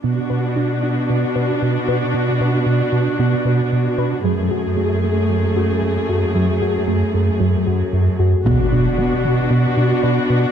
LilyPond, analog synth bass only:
\new Staff \with { instrumentName = "Analog synth bass" } { \clef bass \time 4/4 \key b \dorian \tempo 4 = 114 b,8 b,8 b,8 b,8 b,8 b,8 b,8 b,8 | b,8 b,8 b,8 b,8 b,8 b,8 b,8 b,8 | fis,8 fis,8 fis,8 fis,8 fis,8 fis,8 fis,8 fis,8 | fis,8 fis,8 fis,8 fis,8 fis,8 fis,8 fis,8 fis,8 |
b,8 b,8 b8 b,8 b,8 b,8 b,8 b,8 | }